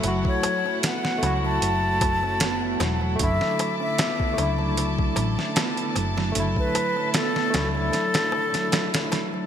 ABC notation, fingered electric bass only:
X:1
M:4/4
L:1/8
Q:1/4=76
K:Dlyd
V:1 name="Fingered electric bass" clef=bass
F,,, z2 C,, F,,,3 E,,, | F,,, z2 C,,2 A,,, z F,,, | F,,, z2 C,, z4 |]